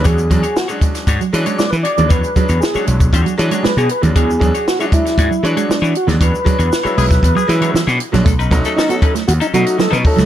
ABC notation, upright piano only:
X:1
M:4/4
L:1/16
Q:1/4=117
K:E
V:1 name="Upright piano"
[F,G,C=D] z [F,G,CD] [CD] z [F,G,CD]4 z [F,G,CD]2 z [CD] z [F,G,CD]- | [F,G,C=D] z [F,G,CD] [CD] z [F,G,CD]4 z [F,G,CD]2 z [CD] z [F,G,CD]- | [F,G,C=D] z [F,G,CD] [CD] z [F,G,CD]4 z [F,G,Dc]2 z D z [F,G,CD]- | [F,G,C=D] z [F,G,CD] [CD] z [F,G,CE]4 z [F,G,CE]2 z [CD] z [F,G,CD] |
z2 [F,A,CD]2 z [F,A,CD]2 z [CD] z [F,A,CD]3 z [F,A,CD]2 |]